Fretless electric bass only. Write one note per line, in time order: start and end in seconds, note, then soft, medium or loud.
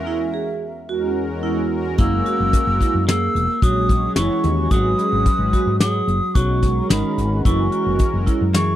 1.99 2.21 F#1 medium
2.40 2.51 F#1 medium
2.67 2.78 F#1 medium
2.94 3.27 F#2 medium
3.35 3.46 E1 medium
3.62 4.07 A#1 medium
4.16 4.28 F#1 medium
4.44 4.66 D#2 medium
4.71 4.93 G#1 medium
5.12 5.24 G#1 medium
5.39 5.50 G#1 medium
5.66 6.00 G#2 medium
6.07 6.19 F#1 medium
6.35 6.80 B1 medium
6.90 7.01 G#1 medium
7.18 7.40 G#1 medium
7.45 7.68 F#1 loud
7.86 7.98 F#1 medium
8.14 8.25 F#1 medium
8.41 8.74 F#2 medium